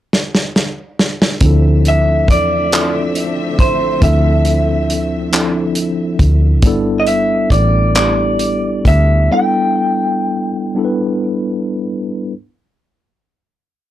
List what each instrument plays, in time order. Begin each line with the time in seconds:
0.13 snare
0.35 snare
0.56 snare
0.99 snare
1.22 snare
1.41 fingered electric bass D2, string section D3 A3 C4 E5, tine electric piano F3 C4 D4, kick, closed hi-hat
1.45 tine electric piano E4 A4
1.85 clean electric guitar E5, closed hi-hat
2.28 fingered electric bass E2, clean electric guitar D5, kick, closed hi-hat
2.72 tine electric piano C4 D4 E4 F4 A4, clap, closed hi-hat
3.15 closed hi-hat
3.59 fingered electric bass A1, clean electric guitar C5, kick, closed hi-hat
4.00 fingered electric bass D2, tine electric piano F3 C4 D4 E4, clean electric guitar E5, kick, closed hi-hat
4.04 tine electric piano A4
4.45 closed hi-hat
4.90 closed hi-hat
5.32 tine electric piano F3 C4 D4 E4 A4, clap, closed hi-hat
5.75 closed hi-hat
6.19 fingered electric bass D2, kick, closed hi-hat
6.62 fingered electric bass G1, tine electric piano G3 B3 D4 E4, kick, closed hi-hat
6.67 tine electric piano A4
7.00 clean electric guitar D#5
7.07 clean electric guitar E5, closed hi-hat
7.50 fingered electric bass A1, clean electric guitar D5, kick, closed hi-hat
7.95 tine electric piano G3 B3 D4 E4, clean electric guitar D5, clap, closed hi-hat
7.99 tine electric piano G4
8.39 closed hi-hat
8.85 fingered electric bass D2, clean electric guitar E5, kick, closed hi-hat
9.31 tine electric piano G3 B3 D4 E4 A4, clean electric guitar G5
10.75 tine electric piano G3 B3 D4 E4 A4
10.85 tine electric piano B4